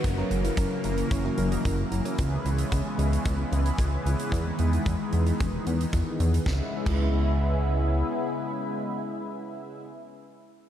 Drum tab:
CC |----------------|----------------|----------------|---x------------|
HH |x-xxx-xxx-xxx-xx|x-xxx-xxx-xxx-xx|x-xxx-xxx-xxx-xx|----------------|
SD |----------------|----------------|----------------|o---------------|
BD |o---o---o---o---|o---o---o---o---|o---o---o---o---|o--o------------|

CC |----------------|
HH |----------------|
SD |----------------|
BD |----------------|